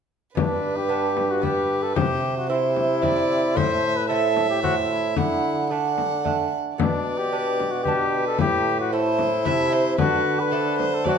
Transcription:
0.35 1.92 G2 soft
0.35 1.93 G2 medium
0.35 0.78 D4 medium
0.35 1.39 B4 medium
0.35 frame drum medium
0.77 1.32 G4 medium
0.88 1.38 B3 soft
0.88 1.39 D4 soft
1.17 frame drum soft
1.31 1.45 F#4 medium
1.41 1.91 B3 soft
1.41 1.92 D4 soft
1.41 1.84 G4 medium
1.41 1.97 B4 medium
1.41 frame drum soft
1.83 1.94 A4 medium
1.95 3.52 C3 soft
1.95 3.58 C3 medium
1.95 2.35 G4 medium
1.95 2.49 C5 medium
1.95 frame drum medium
2.37 2.49 F#4 medium
2.49 2.99 C4 soft
2.49 3.58 E4 medium
2.49 2.99 E4 soft
2.49 3.03 C5 medium
2.76 frame drum soft
3.02 3.52 C4 soft
3.02 3.52 E4 soft
3.02 3.58 D5 medium
3.02 frame drum soft
3.55 5.12 A2 soft
3.55 5.17 A2 medium
3.55 3.98 C5 medium
3.55 4.09 E5 medium
3.55 frame drum medium
3.96 4.08 B4 medium
4.08 4.59 A3 soft
4.08 4.59 C4 soft
4.08 4.59 E4 soft
4.08 4.48 A4 medium
4.08 5.19 E5 medium
4.36 frame drum soft
4.49 4.63 G4 medium
4.63 5.13 A3 soft
4.63 5.13 C4 soft
4.63 5.13 E4 soft
4.63 4.75 F#4 medium
4.63 frame drum soft
4.89 5.16 E4 medium
5.16 6.48 D3 soft
5.16 6.49 D3 medium
5.16 5.73 E4 medium
5.16 5.70 F#5 medium
5.16 frame drum medium
5.71 6.21 A3 soft
5.71 6.52 D4 medium
5.71 6.21 D4 soft
5.71 6.57 F#5 medium
5.98 frame drum soft
6.25 6.74 A3 soft
6.25 6.75 D4 soft
6.25 frame drum soft
6.78 8.35 B2 soft
6.78 8.41 B2 medium
6.78 7.19 D4 medium
6.78 7.86 D5 soft
6.78 frame drum medium
7.18 7.72 G4 medium
7.32 7.82 B3 soft
7.32 7.81 D4 soft
7.60 frame drum soft
7.71 7.83 F#4 medium
7.83 8.35 B3 soft
7.83 8.23 G4 medium
7.83 8.94 B4 medium
7.83 frame drum soft
7.87 8.36 D4 soft
8.27 8.39 A4 medium
8.38 9.48 A2 medium
8.38 9.42 A2 medium
8.38 8.78 G4 medium
8.38 frame drum medium
8.80 8.92 F#4 medium
8.92 9.42 A3 soft
8.92 9.42 C4 soft
8.92 9.97 E4 medium
8.92 9.47 C5 medium
9.19 frame drum soft
9.45 9.95 C3 medium
9.45 9.98 C3 medium
9.45 9.95 A3 soft
9.45 9.95 C4 medium
9.45 9.74 E5 medium
9.45 frame drum soft
9.73 9.98 C5 medium
9.98 11.02 D3 medium
9.98 11.03 D3 medium
9.98 10.41 F#4 medium
9.98 10.53 B4 medium
9.98 frame drum medium
10.40 10.96 B4 medium
10.51 11.01 A3 soft
10.51 11.02 C4 soft
10.51 11.02 D4 soft
10.51 10.78 A4 medium
10.79 11.06 C5 medium
10.79 frame drum soft
10.94 11.07 A4 medium
11.05 11.18 F#3 soft
11.05 11.18 F#3 medium
11.05 11.18 A3 soft
11.05 11.18 C4 soft
11.05 11.18 D4 soft
11.05 11.18 F#4 medium
11.05 11.18 D5 medium
11.05 frame drum soft

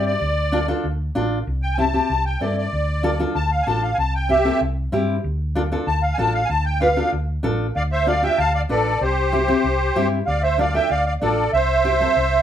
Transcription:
0.00 0.15 G2 medium
0.00 0.11 C4 medium
0.00 0.12 E4 medium
0.00 0.12 G4 medium
0.06 0.67 D5 loud
0.21 0.71 D2 loud
0.52 0.58 D4 medium
0.52 0.58 F4 medium
0.52 0.58 A4 loud
0.68 0.85 D4 medium
0.68 0.85 F4 medium
0.68 0.85 A4 medium
0.84 1.09 D2 medium
1.15 1.41 A1 medium
1.15 1.37 D4 medium
1.15 1.38 F4 medium
1.15 1.38 A4 medium
1.47 1.97 C2 loud
1.63 1.78 G5 loud
1.74 1.84 C4 medium
1.74 1.77 G#5 medium
1.79 1.84 E4 medium
1.79 1.84 G4 medium
1.79 2.24 A5 loud
1.93 2.10 C4 medium
1.93 2.11 E4 medium
1.93 2.11 G4 medium
2.10 2.35 C2 medium
2.26 2.41 G5 medium
2.41 2.66 G2 medium
2.41 2.63 C4 medium
2.41 2.63 E4 medium
2.41 2.63 A4 medium
2.41 2.56 D5 medium
2.58 3.18 D5 medium
2.73 3.23 D2 loud
3.03 3.09 D4 medium
3.03 3.09 F4 medium
3.03 3.10 A4 loud
3.19 3.36 D4 medium
3.19 3.36 F4 medium
3.19 3.37 A4 medium
3.35 3.61 D2 medium
3.35 3.51 A5 medium
3.52 3.67 F5 medium
3.63 3.65 G#5 medium
3.67 3.92 A1 medium
3.67 3.89 D4 medium
3.67 3.89 F4 medium
3.67 3.89 A4 medium
3.67 3.82 A5 loud
3.83 3.98 F5 medium
3.94 4.49 C2 loud
3.94 3.97 G#5 medium
3.99 4.14 A5 medium
4.15 4.30 G5 medium
4.29 4.35 C4 medium
4.29 4.35 E4 medium
4.29 4.35 G4 medium
4.29 4.60 G4 medium
4.29 4.61 E5 loud
4.45 4.62 C4 medium
4.45 4.62 E4 medium
4.45 4.62 A4 medium
4.61 4.86 C2 medium
4.92 5.18 G2 medium
4.92 5.15 C4 medium
4.92 5.15 E4 medium
4.92 5.15 G4 medium
5.24 5.74 D2 loud
5.55 5.61 D4 medium
5.55 5.61 F4 medium
5.55 5.62 A4 loud
5.72 5.88 D4 medium
5.72 5.88 F4 medium
5.72 5.88 A4 medium
5.87 6.12 D2 medium
5.87 6.02 A5 loud
6.02 6.18 F5 medium
6.14 6.40 D4 medium
6.14 6.16 G#5 medium
6.18 6.44 A1 medium
6.18 6.41 F4 medium
6.18 6.41 A4 medium
6.18 6.34 A5 loud
6.34 6.49 F5 loud
6.45 6.47 G#5 medium
6.49 7.00 D2 loud
6.49 6.65 A5 loud
6.65 6.81 G5 medium
6.81 6.87 D4 medium
6.81 6.87 F4 medium
6.81 6.87 B4 medium
6.81 7.11 F5 medium
6.97 7.13 D4 medium
6.97 7.14 F4 medium
6.97 7.14 A4 medium
7.13 7.38 D2 medium
7.43 7.69 A1 medium
7.43 7.66 D4 medium
7.43 7.66 F4 medium
7.43 7.66 A4 loud
7.76 8.26 D2 loud
7.76 7.83 D5 medium
7.76 7.83 F5 medium
7.92 8.07 C5 medium
7.92 8.06 E5 loud
8.07 8.12 D4 medium
8.07 8.13 F4 medium
8.07 8.13 A4 medium
8.07 8.22 D5 medium
8.07 8.23 F5 loud
8.22 8.39 D4 medium
8.22 8.39 F4 medium
8.22 8.40 G4 medium
8.22 8.38 E5 medium
8.22 8.39 G5 medium
8.38 8.64 D2 medium
8.38 8.52 F5 medium
8.38 8.53 A5 loud
8.54 8.62 D5 medium
8.54 8.61 F5 medium
8.69 8.95 A1 medium
8.69 8.92 D4 medium
8.69 8.92 F4 medium
8.69 9.00 A4 medium
8.69 8.92 B4 medium
8.69 9.02 D5 loud
9.01 9.52 C2 loud
9.01 10.08 G4 medium
9.01 10.08 C5 loud
9.32 9.38 C4 medium
9.32 9.38 E4 medium
9.32 9.39 G4 medium
9.48 9.65 C4 medium
9.48 9.65 E4 medium
9.48 9.65 G4 medium
9.64 9.89 C2 medium
9.95 10.21 G2 medium
9.95 10.18 C4 medium
9.95 10.18 E4 medium
9.95 10.18 G4 medium
10.26 10.78 D2 loud
10.26 10.42 D5 medium
10.26 10.42 F5 medium
10.43 10.58 C5 medium
10.43 10.58 E5 medium
10.58 10.64 D4 medium
10.58 10.64 F4 medium
10.58 10.64 A4 medium
10.58 10.74 D5 medium
10.58 10.74 F5 medium
10.74 10.91 D4 medium
10.74 10.91 F4 medium
10.74 10.91 A4 medium
10.74 10.90 E5 medium
10.74 10.91 G5 loud
10.90 11.16 D2 medium
10.90 11.05 D5 medium
10.90 11.04 F5 loud
11.06 11.14 D5 medium
11.06 11.13 F5 medium
11.21 11.47 A1 medium
11.21 11.44 D4 medium
11.21 11.44 F4 medium
11.21 11.44 A4 medium
11.21 11.51 A4 medium
11.21 11.51 D5 medium
11.53 12.04 C2 loud
11.53 12.42 C5 medium
11.53 12.42 E5 loud
11.84 11.90 C4 medium
11.84 11.90 E4 medium
11.84 11.90 G4 medium
12.00 12.17 C4 medium
12.00 12.17 E4 medium
12.00 12.17 A4 medium
12.16 12.42 C2 medium

